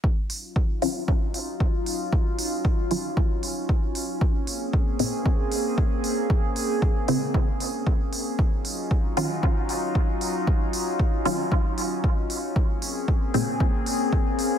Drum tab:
HH |-o-o-o-o|-o-o-o-o|-o-o-o-o|-o-o-o-o|
BD |o-o-o-o-|o-o-o-o-|o-o-o-o-|o-o-o-o-|

HH |-o-o-o-o|-o-o-o-o|-o-o-o-o|
BD |o-o-o-o-|o-o-o-o-|o-o-o-o-|